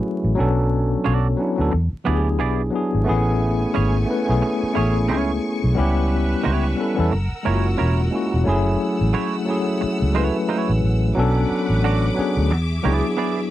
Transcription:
Already playing: tine electric piano F#3 A3 C#4 E4 F#4 G#4 B4
0.24 fingered electric bass A1
0.35 tine electric piano F#3 B3 C#4 D4
0.40 fingered electric bass B1, tine electric piano A4
1.04 fingered electric bass B1, clean electric guitar D4 F#4 A4 D5
1.37 tine electric piano F#3 B3 C#4 D4
1.42 tine electric piano E4
1.56 fingered electric bass D2, tine electric piano F#3 B3 C#4 D4
1.61 tine electric piano A4
1.72 fingered electric bass E2, muted clean electric guitar stroke
1.93 muted fingered electric bass stroke
2.04 fingered electric bass D2, tine electric piano F#3 B3 D4 E4, clean electric guitar B3 E4 G#4 D5
2.09 tine electric piano G4
2.15 tine electric piano G#4
2.39 fingered electric bass B1, clean electric guitar B3 E4 G#4 D5
2.70 tine electric piano F#3 B3 D4 E4
2.75 tine electric piano G#4
2.94 fingered electric bass G#1
3.04 tine electric piano A3 B3 C#4 E4, string section A3 G#5 C#6
3.09 fingered electric bass A1, tine electric piano G#4
3.74 fingered electric bass G#1, clean electric guitar C#4 E4 G#4 C#5
4.06 tine electric piano A3 B3 C#4 E4
4.11 tine electric piano B4
4.25 tine electric piano A3 B3 C#4 E4
4.29 fingered electric bass B1, tine electric piano G#4
4.42 muted clean electric guitar stroke
4.63 muted fingered electric bass stroke
4.73 fingered electric bass A1, tine electric piano A3 B3 C#4 E4, clean electric guitar C#4 E4 G#4 C#5
4.78 tine electric piano G#4
5.08 fingered electric bass C#2, clean electric guitar C#4 E4 G#4 C#5
5.64 fingered electric bass B1
5.74 tine electric piano G3 B3 C#4 E4, string section B4 E5
5.79 fingered electric bass C#2, tine electric piano G4
6.43 fingered electric bass C#2, clean electric guitar B3 E4 G4 C#5
6.76 tine electric piano G3 B3 C#4 E4
6.80 tine electric piano A4
6.95 fingered electric bass E2, tine electric piano G3 B3 C#4 E4
7.00 tine electric piano A4
7.10 fingered electric bass F#1, string section A#4 F#5 E6, muted clean electric guitar stroke
7.32 muted fingered electric bass stroke
7.43 fingered electric bass F#1, tine electric piano G#3 A#3 C#4 E4, clean electric guitar C#4 E4 A#4 C#5
7.47 tine electric piano F4
7.54 tine electric piano F#4
7.78 fingered electric bass E1, clean electric guitar C#4 E4 A#4 C#5
8.10 tine electric piano G#3 A#3 C#4 E4
8.15 tine electric piano F#4
8.34 fingered electric bass E1
8.44 fingered electric bass F#1, tine electric piano F#3 A3 C#4 E4, string section A3 F#5 E6
8.49 tine electric piano G#4
9.01 fingered electric bass A1
9.13 clean electric guitar A3 E4 F#4 C#5
9.45 tine electric piano F#3 A3 C#4 E4
9.50 tine electric piano G#4
9.81 muted clean electric guitar stroke, muted fingered electric bass stroke
10.02 fingered electric bass C#2
10.12 tine electric piano F#3 A3 C#4 E4, clean electric guitar A3 E4 F#4 C#5
10.18 tine electric piano B4
10.49 clean electric guitar A3 E4 F#4 C#5
10.69 fingered electric bass A1
10.84 fingered electric bass A1
11.13 fingered electric bass B1, tine electric piano F#3 B3 C#4, string section B4 F#5 D6
11.18 tine electric piano D4 A4
11.70 fingered electric bass A1
11.84 clean electric guitar D4 F#4 A4 D5
12.14 tine electric piano F#3 B3 C#4 D4
12.19 tine electric piano G#4, muted fingered electric bass stroke
12.37 fingered electric bass D2
12.49 fingered electric bass E2, string section G#4 E5, muted clean electric guitar stroke
12.83 fingered electric bass C#2, tine electric piano F#3 B3 D4 E4, clean electric guitar B3 E4 G#4 D5
12.88 tine electric piano G#4
13.17 clean electric guitar B3 E4 G#4 D5

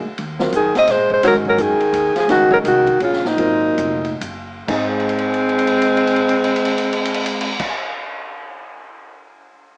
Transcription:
0.05 muted upright bass stroke
0.18 upright bass D#2, ride
0.39 grand piano F#3 C4 F4 A#4, snare
0.52 upright bass F#2, tenor saxophone D#3, alto saxophone G#4, hi-hat pedal, ride
0.75 tenor saxophone C4, alto saxophone D#5, muted upright bass stroke, snare, ride
0.87 upright bass A#2, tenor saxophone G#3, alto saxophone C5, snare, ride
1.10 tenor saxophone G#3, alto saxophone C5, kick
1.23 upright bass G#2, grand piano D#3 G#3 C#4 F#4, tenor saxophone F#3, snare, ride
1.28 alto saxophone A#4
1.45 tenor saxophone F#3, alto saxophone A#4, kick
1.58 upright bass F#2, tenor saxophone D#3, alto saxophone G#4, hi-hat pedal, ride
1.79 muted upright bass stroke, ride
1.92 upright bass D#2, hi-hat pedal, ride
2.16 tenor saxophone F3, muted upright bass stroke, snare, ride
2.20 alto saxophone G#4
2.28 upright bass C#2, grand piano D#3 G#3 C#4 F#4, tenor saxophone D#3, alto saxophone F#4, snare, ride
2.51 tenor saxophone F#3, alto saxophone A#4, kick
2.64 upright bass C2, tenor saxophone D#3, hi-hat pedal, ride
2.68 alto saxophone F#4
2.87 kick, ride
3.00 upright bass A#1, tenor saxophone C#3, alto saxophone F4, ride
3.13 snare
3.25 tenor saxophone A#2, alto saxophone D#4, snare
3.38 upright bass G#1, grand piano F#3 C4 F4 A#4, ride
3.78 upright bass F1, hi-hat pedal, ride
4.04 ride
4.21 upright bass F#1, hi-hat pedal, ride
4.67 upright bass G#1, grand piano G#2 G#3 D#4 C5 D#5, tenor saxophone G#3, alto saxophone C4, kick, crash
5.00 crash
5.09 ride
5.18 crash
5.34 ride
5.49 crash
5.58 ride
5.67 crash
5.82 ride
5.97 crash
6.07 ride
6.16 crash
6.29 ride
6.44 crash
6.56 ride
6.65 crash
6.78 ride
6.93 crash
7.05 ride
7.14 crash
7.26 ride
7.41 crash
7.59 kick, crash

